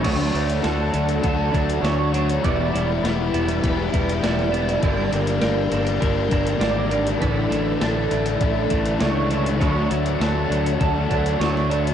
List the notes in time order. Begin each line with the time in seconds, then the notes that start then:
0.03 D2 D3 F#3 A3 D4 F#4 C#5 F#5, kick, closed hi-hat, crash
0.34 D2 F#3 A3 D4, closed hi-hat
0.50 closed hi-hat
0.62 D2 D3 A3 D4 F#4 A4, snare, closed hi-hat
0.93 D2 F#3 A3 D4, closed hi-hat
1.09 closed hi-hat
1.22 D2 D3 A3 D4 F#4 A4, kick, closed hi-hat
1.52 D2 F#3 A3 D4 F#4, kick, closed hi-hat
1.70 closed hi-hat
1.82 D2 D3 F#3 A3 D4 C#5, snare, closed hi-hat
2.13 F#3 A3 D4 F#4, closed hi-hat
2.30 closed hi-hat
2.41 E1 E3 G3 B3 E4 D5 G5, kick, closed hi-hat
2.73 E1 G3 B3 E4, closed hi-hat
3.03 E1 E3 G3 B3 E4 B4, snare, closed hi-hat
3.33 E1 G3 B3 E4, closed hi-hat
3.49 closed hi-hat
3.63 E1 E3 G3 B3 E4 B4, kick, closed hi-hat
3.92 E1 G3 B3 E4, kick, closed hi-hat
4.09 closed hi-hat
4.22 E1 E3 G3 B3 E4 D5, snare, closed hi-hat
4.39 snare
4.52 G3 B3 E4, closed hi-hat
4.69 closed hi-hat
4.81 G1 G2 D3 G3 A#3 D4 A#4 D5, kick, closed hi-hat
5.11 G1 G3 A#3 D4, closed hi-hat
5.27 closed hi-hat
5.41 G1 D3 G3 A#3 D4 A#4, snare, closed hi-hat
5.71 G1 G3 A#3 D4, closed hi-hat
5.87 closed hi-hat
6.00 G1 G2 D3 G3 A#3 D4 A#4, kick, closed hi-hat
6.31 G1 G3 A#3 D4, kick, closed hi-hat
6.47 closed hi-hat
6.59 G#1 D3 G3 A#3 D4 D5, snare, closed hi-hat
6.91 G3 A#3 D4, closed hi-hat
7.07 closed hi-hat
7.20 A1 A2 D3 E3 A3 D4 A4 B4 E5, kick, closed hi-hat
7.50 A1 E3 A3 D4, closed hi-hat
7.80 A1 D3 E3 A3 D4 A4, snare, closed hi-hat
8.11 A1 E3 A3 D4, closed hi-hat
8.26 closed hi-hat
8.40 A1 A2 D3 E3 A3 D4 A4, kick, closed hi-hat
8.70 A1 E3 A3 D4, kick, closed hi-hat
8.85 closed hi-hat
9.00 C#2 D3 E3 A3 D4 C#5, snare, closed hi-hat
9.30 E3 A3 D4, closed hi-hat
9.46 closed hi-hat
9.60 D2 D3 F#3 A3 D4 C#5 F#5, kick, closed hi-hat
9.90 D2 F#3 A3 D4, closed hi-hat
10.06 closed hi-hat
10.20 D2 D3 F#3 A3 A4, snare, closed hi-hat
10.24 D4
10.50 D2 F#3 A3 D4, closed hi-hat
10.66 closed hi-hat
10.79 D2 D3 F#3 A3 A4, kick, closed hi-hat
10.84 D4
11.09 D2 F#3 A3 D4, kick, closed hi-hat
11.26 closed hi-hat
11.39 D2 D3 F#3 A3 D4 C#5, snare, closed hi-hat
11.57 snare
11.70 F#3 A3 D4, closed hi-hat
11.87 closed hi-hat